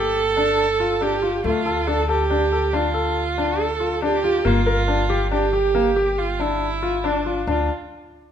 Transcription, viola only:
0.00 1.04 A4 loud
1.02 1.44 G4 medium
1.45 1.89 F4 medium
1.87 2.09 A4 medium
2.10 2.76 G4 medium
2.74 3.62 F4 medium
3.61 4.03 A4 medium
4.04 4.48 G4 loud
4.47 5.31 F4 medium
5.32 6.20 G4 medium
6.18 6.42 F4 medium
6.40 7.06 E4 medium
7.04 7.48 D4 medium
7.49 7.69 F4 medium

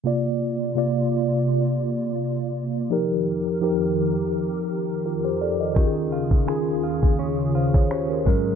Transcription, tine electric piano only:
0.04 0.56 C3 medium
0.04 0.57 A#3 medium
0.04 0.57 F4 medium
0.04 0.58 D5 medium
0.75 1.77 C3 medium
0.75 1.78 A#3 medium
0.75 1.79 F4 medium
0.75 1.79 D5 medium
2.90 3.42 F3 medium
2.90 3.43 D#4 medium
2.90 3.43 G4 medium
2.90 3.44 A#4 medium
3.61 4.63 F3 medium
3.61 4.64 D#4 medium
3.61 4.64 G4 medium
3.61 4.65 A#4 medium
5.06 5.24 F4 soft
5.06 5.24 A#4 medium
5.25 5.40 G4 medium
5.25 5.40 C5 medium
5.41 5.60 A4 medium
5.41 5.59 D5 medium
5.60 5.94 A#4 soft
5.60 5.94 D#5 medium
5.75 6.28 D#3 medium
5.75 6.28 C#4 medium
5.75 6.29 F4 medium
5.75 5.84 G4 medium
5.85 6.33 G#4 medium
6.47 7.49 D#3 medium
6.47 7.50 C#4 medium
6.47 7.20 F4 medium
6.47 7.20 G#4 medium
7.55 7.74 C5 soft
7.55 7.73 F5 medium
7.74 7.90 G#4 medium
7.74 7.90 C#5 medium
7.91 8.09 G4 medium
7.91 8.09 C5 medium
8.10 8.44 F4 soft
8.10 8.27 A#4 medium
8.25 8.55 G#2 medium
8.25 8.55 F#3 medium
8.25 8.55 C#4 medium
8.25 8.55 A#4 loud

